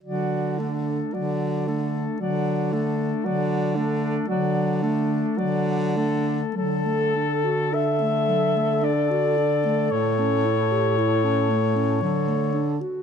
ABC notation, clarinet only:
X:1
M:3/4
L:1/16
Q:1/4=56
K:D
V:1 name="Clarinet"
F,2 A,2 F,2 A,2 F,2 A,2 | F,2 A,2 F,2 A,2 F,2 A,2 | F, A, D F D A, F, A, D F D A, | A, C E G E C A, C F, A, D F |]